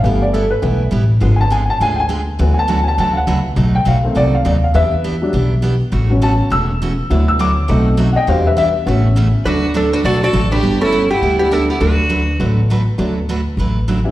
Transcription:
X:1
M:4/4
L:1/8
Q:"Swing" 1/4=204
K:D
V:1 name="Hollow-body jazz guitar"
z8 | z8 | z8 | z8 |
z8 | z8 | z8 | z8 |
[DB]2 [DA] [DB] [Fd] [Fd]2 [DB]- | [DB] [CA]2 [B,G]2 [B,G] [DA] [B,G] | [DB]4 z4 | z8 |]
V:2 name="Fiddle"
z8 | z8 | z8 | z8 |
z8 | z8 | z8 | z8 |
F2 D F A A2 G- | G E2 E2 E E E | F4 z4 | z8 |]
V:3 name="Upright piano"
=f d A B4 z | z [^ga] g [ga] g [=g^g]2 z | z [^ga] a [ga] a [=f^f]2 z | z g =f2 d f d f |
[Be]6 z2 | z2 a2 e' z3 | z e' d'2 z3 [^dfg] | [=c=f] [Be] e6 |
[A,B,DFA]3 z4 z | z4 z [G,B,DEG]3 | [F,A,B,DF] z3 [F,A,B,DF]3 z | [F,A,B,DF] z6 [E,G,B,DE] |]
V:4 name="Upright piano"
[E,A,B,]3 z [E,A,B,] z3 | [D,^E,B,] z6 z | [E,F,B,]8 | z3 [^D,A,=C]3 z2 |
z3 [F,G,D] z4 | z [F,B,C]3 z4 | [F,B,E]4 [A,=C^D]3 z | [G,DF]3 z [B,CF]4 |
z8 | z8 | z8 | z8 |]
V:5 name="Steel-string acoustic guitar"
[G,B,EG] z [G,B,EG] z [G,B,EG] z [G,B,EG] z | [D,^G,B,^E^G] z [D,G,B,EG] z [D,G,B,EG] z [D,G,B,EG] z | [D,F,A,DFB] z [D,F,A,DFB] z [D,F,A,DFB] z [D,F,A,DFB] z | [B,,F,A,^DF] z [B,,F,A,DF] z [B,,F,A,DF] z [B,,F,A,DF] z |
[E,B,DG] z [E,B,DG] z [E,B,DG] z [E,B,DG] z | [C,E,A,CF] z [C,E,A,CF] z [C,E,A,CF] z [C,E,A,CF] z | [D,F,A,DFB] z [D,F,A,DFB] z [B,,F,A,^DF] z [B,,F,A,DF] z | [E,B,DG] z [E,B,DG] z [C,E,A,CF] z [C,E,A,CF] z |
[D,F,A,DFB] z [D,F,A,DFB] z [D,F,A,DFB] z [D,F,A,DFB] z | [G,B,EG] z [G,B,EG] z [G,B,EG] z [G,B,EG] z | [D,F,A,DFB] z [D,F,A,DFB] z [D,F,A,DFB] z [D,F,A,DFB] z | [D,F,A,DFB] z [D,F,A,DFB] z [D,F,A,DFB] z [D,F,A,DFB] z |]
V:6 name="Upright bass" clef=bass
G,,,4 B,,,2 A,,,2 | ^G,,,4 D,,4 | D,,4 D,,2 C,,2 | B,,,2 B,,,2 =C,,2 ^D,,2 |
E,,4 B,,,4 | A,,,4 E,,,4 | D,,4 B,,,4 | E,,4 A,,,4 |
D,,4 B,,,2 A,,,2 | G,,,4 D,,4 | D,,4 A,,,4 | D,,4 A,,,4 |]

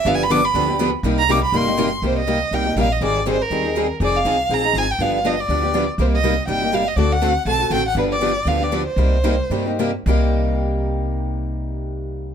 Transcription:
X:1
M:4/4
L:1/8
Q:"Swing" 1/4=242
K:Cm
V:1 name="Violin"
(3f a =b d' b3 z2 | z b d' =b c'3 z | c e3 g2 f e | d2 c B4 z |
d f3 b2 a g | f2 e d4 z | c e3 g2 f e | d ^f3 =a2 g f |
=B d3 f d2 c- | c6 z2 | z8 | z8 |]
V:2 name="Steel-string acoustic guitar"
[D,F,=B,DG] z [D,F,B,DG] z [D,F,B,DG] [B,DG] [D,F,B,DG] z | [C,G,B,EG] z [C,G,B,EG] z [C,G,B,EG] [B,EG] [C,G,B,EG] z | [C,G,B,EG] z [C,G,B,EG] z [C,G,B,EG] [B,EG] [C,G,B,EG] z | [E,G,CEA] z [E,G,CEA] z [E,G,CEA] [CEA] [E,G,CEA] z |
[F,CEA] z [F,CEA] z [F,CEA] [CEA] [F,CEA] z | [D,F,=B,DG] z [D,F,B,DG] z [D,F,B,DG] [B,DG] [D,F,B,DG] z | [C,G,B,EG] z [C,G,B,EG] z [C,G,B,EG] [B,EG] [C,G,B,EG] z | [D,=A,C^F=A] z [D,A,CFA] z [D,A,CFA] [CFA] [D,A,CFA] z |
[D,F,=B,DG] z [D,F,B,DG] z [D,F,B,DG] [B,DG] [D,F,B,DG] z | [C,G,B,EG] z [C,G,B,EG] z [C,G,B,EG] [B,EG] [C,G,B,EG] z | [C,G,B,EG]8- | [C,G,B,EG]8 |]
V:3 name="Steel-string acoustic guitar"
[D,F,=B,DG] z [D,F,B,DG] z [D,F,B,DG] z [D,F,B,DG] z | [C,G,B,EG] z [C,G,B,EG] z [C,G,B,EG] z [C,G,B,EG] z | [C,G,B,EG] z [C,G,B,EG] z [C,G,B,EG] z [C,G,B,EG] z | [E,G,CEA] z [E,G,CEA] z [E,G,CEA] z [E,G,CEA] z |
[F,CEA] z [F,CEA] z [F,CEA] z [F,CEA] z | [D,F,=B,DG] z [D,F,B,DG] z [D,F,B,DG] z [D,F,B,DG] z | [C,G,B,EG] z [C,G,B,EG] z [C,G,B,EG] z [C,G,B,EG] z | [D,=A,C^F=A] z [D,A,CFA] z [D,A,CFA] z [D,A,CFA] z |
[D,F,=B,DG] z [D,F,B,DG] z [D,F,B,DG] z [D,F,B,DG] z | [C,G,B,EG] z [C,G,B,EG] z [C,G,B,EG] z [C,G,B,EG] z | [C,G,B,EG]8- | [C,G,B,EG]8 |]
V:4 name="Upright bass" clef=bass
G,,,4 D,,4 | C,,4 G,,,4 | C,,4 C,,2 B,,,2 | A,,,4 E,,4 |
F,,,2 C,,2 B,,,2 A,,,2 | G,,,4 D,,4 | C,,4 G,,,4 | D,,4 =B,,,2 =A,,,2 |
G,,,4 D,,4 | C,,4 G,,4 | C,,8- | C,,8 |]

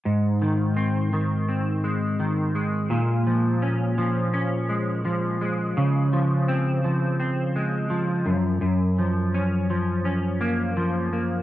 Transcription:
X:1
M:4/4
L:1/8
Q:"Swing 16ths" 1/4=84
K:Ab
V:1 name="Clean electric guitar" clef=bass
A,, E, C E, C A, E, A, | B,, F, D F, D A, F, A, | D, F, C F, C A, F, _G,, | _G,, F, D F, D B, F, B, |]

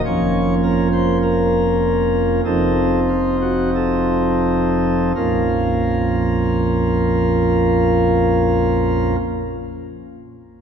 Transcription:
X:1
M:4/4
L:1/16
Q:1/4=44
K:Bbm
V:1 name="Pipe organ"
d2 B c B4 =A2 F G A4 | [B,,,F,,F,B,DFB]16 |]
V:2 name="Pipe organ" clef=bass
[F,,,F,,F,B,D]8 [F,,,F,,F,CE]8 | z16 |]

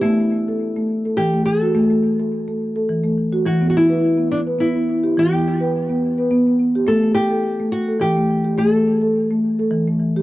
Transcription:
X:1
M:3/4
L:1/16
Q:"Swing 16ths" 1/4=105
K:Em
V:1 name="Nylon-string guitar"
E8 G2 A2- | A8- A2 z2 | F3/2 F/2 E4 D2 E4 | G4 z8 |
A2 G4 F2 G4 | A4 z8 |]
V:2 name="Marimba"
z3 A2 A,2 A2 A,2 F | z A,2 A2 A,2 A2 A,2 F | z B,2 B2 B,2 B2 B,2 G | z B,2 B2 B,2 B2 B,2 G |
z A,2 A2 A,2 A2 A,2 G | z A,2 A2 A,2 A2 A,2 G |]
V:3 name="Marimba" clef=bass
A,8 E,4 | A,8 E,4 | E,8 B,4 | E,8 B,4 |
A,8 E,4 | A,8 E,4 |]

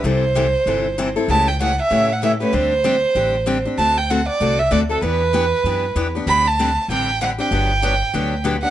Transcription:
X:1
M:4/4
L:1/8
Q:"Swing" 1/4=193
K:Dmix
V:1 name="Violin"
c6- c z | a g f e2 f e B | c6- c z | a g f d2 e d A |
B6- B z | b a3 g2 f g- | g6 z f |]
V:2 name="Steel-string acoustic guitar"
[C,E,G,CEA] z [C,E,G,CEA] z [C,E,G,CEA] z [C,E,G,CEA] [G,CEA] | [^C,E,A,^CG] z [C,E,A,CG] z [C,E,A,CG] z [C,E,A,CG] [A,CG] | [D,G,CDG] z [D,G,CDG] z [D,G,CDG] z [D,G,CDG] [CDG] | [D,A,CFA] z [D,A,CFA] z [D,A,CFA] z [D,A,CFA] [CFA] |
[E,B,DG] z [E,B,DG] z [E,B,DG] z [E,B,DG] [B,DG] | [D,G,CDG] z [D,G,CDG] z [D,G,CDG] z [D,G,CDG] [CDG] | [D,F,B,DG] z [D,F,B,DG] z [D,F,B,DG] z [D,F,B,DG] [B,DG] |]
V:3 name="Upright bass" clef=bass
C,,4 G,,,4 | ^C,,4 A,,4 | D,,4 A,,,4 | D,,4 C,,2 D,,2 |
E,,4 F,,2 E,,2 | D,,4 A,,,4 | G,,,4 D,,4 |]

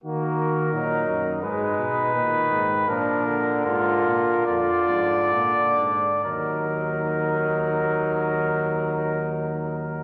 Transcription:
X:1
M:4/4
L:1/8
Q:1/4=72
K:Ebm
V:1 name="Trumpet"
B4 c4 | B2 B2 =d4 | B8 |]
V:2 name="Flugelhorn"
G2 E2 E4 | =D2 F2 F2 D2 | E8 |]
V:3 name="Trombone" clef=bass
B,2 G,2 A,2 E,2 | F, =D,3 D,4 | G,8 |]
V:4 name="Bass trombone" clef=bass
E,2 B,, G,, A,, C, B,, A,, | B,,2 A,, B,, F,, A,, B,, A,, | E,,8 |]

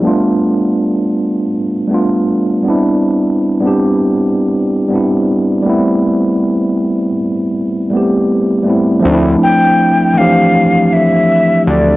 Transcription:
X:1
M:4/4
L:1/16
Q:"Swing 16ths" 1/4=80
K:Ddor
V:1 name="Flute"
z16 | z16 | z16 | z2 g4 f4 e4 d2 |]
V:2 name="Tine electric piano"
[G,A,B,DF]8 z2 [G,A,B,DF]4 [G,B,CDE]2- | [G,B,CDE]3 [G,B,CDG]6- [G,B,CDG] [G,B,CDE]4 [G,A,B,CE]2- | [G,A,B,CE]6 z4 [G,A,B,CG]4 [G,A,B,CE]2 | [F,A,CD_E=E]6 [E,F,A,CDG]8 z2 |]
V:3 name="Analog synth bass" clef=bass
z16 | z16 | z16 | D,,2 z12 D,,2 |]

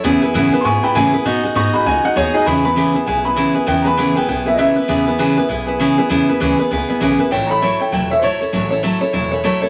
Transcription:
X:1
M:4/4
L:1/8
Q:"Swing" 1/4=198
K:E
V:1 name="Upright piano"
e'3 z [g=c'^c'] [=gb] ^g2 | z2 c' b g f c [DG] | [^ab] b3 g b2 z | =g [^ab]2 g g e [de]2- |
[de]4 z4 | z8 | =g [^ab]2 g g e [=c^c]2- | [=c^c]4 z4 |]
V:2 name="Steel-string acoustic guitar"
[C,E,B,EGB] [B,EGB] [C,E,B,EGB] [B,EGB] [B,EGB] [B,EGB] [C,E,B,EGB] [B,EGB] | [B,DFG] [DFG] [B,DFG] [DFG] [B,DFG] [DFG] [B,DFG] [DFG] | [C,E,B,EGB] [B,EGB] [C,E,B,EGB] [B,EGB] [B,EGB] [B,EGB] [C,E,B,EGB] [B,EGB] | [C,E,B,EGB] [B,EGB] [C,E,B,EGB] [B,EGB] [B,EGB] [B,EGB] [C,E,B,EGB] [B,EGB] |
[C,E,B,EGB] [B,EGB] [C,E,B,EGB] [B,EGB] [B,EGB] [B,EGB] [C,E,B,EGB] [B,EGB] | [C,E,B,EGB] [B,EGB] [C,E,B,EGB] [B,EGB] [B,EGB] [B,EGB] [C,E,B,EGB] [B,EGB] | [F,A,EAc] [EAc] [F,A,EAc] [EAc] [F,EAc] [EAc] [F,A,EAc] [EAc] | [F,A,EAc] [EAc] [F,A,EAc] [EAc] [F,EAc] [EAc] [F,A,EAc] [EAc] |]
V:3 name="Upright bass" clef=bass
E,, z F,, z G,, z A,, z | B,, z G,, z C,, z D,, z | E,,3 z B,,,3 z | E,,3 z B,,,3 z |
E,,3 z B,,,3 z | E,, z =D,, z C,, z B,,, z | A,,,3 z E,,,3 z | A,,,3 z E,,,3 z |]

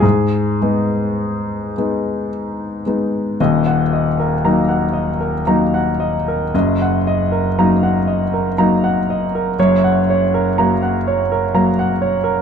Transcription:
X:1
M:3/4
L:1/16
Q:1/4=59
K:G#m
V:1 name="Grand piano"
G8 z4 | [K:Ebm] e g e B b g e B b g e B | e g e B b g e B b g e B | d g d B b g d B b g d B |]
V:2 name="Grand piano"
G,,2 [G,B,D]4 [G,B,D]4 [G,B,D]2 | [K:Ebm] [E,,,E,,]4 [G,B,E]4 [G,B,E]4 | [G,,,G,,]4 [G,B,E]4 [G,B,E]4 | [G,,,G,,]4 [G,B,]4 [G,B,]4 |]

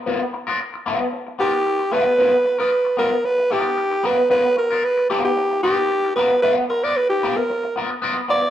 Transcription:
X:1
M:4/4
L:1/16
Q:1/4=113
K:C
V:1 name="Alto saxophone"
z8 z2 G4 B2- | B3 B3 ^A2 B2 G4 B2 | B2 ^A2 B2 G G3 G4 B2 | B2 ^A d B G2 A3 z4 d2 |]
V:2 name="Clean electric guitar"
[B,F^A] z2 [B,FA] z2 [B,FA]2 z2 [B,FA] z3 [B,FA]2 | [B,F^A] z2 [B,FA] z2 [B,FA] z3 [B,FA]2 z2 [B,FA] z | [B,F^A] z2 [B,FA] z2 [B,FA]2 z2 [B,FA] z3 [B,FA] z | [B,F^A]2 z [B,FA] z2 [B,FA] z3 [B,FA] z [B,FA] z [B,FA] z |]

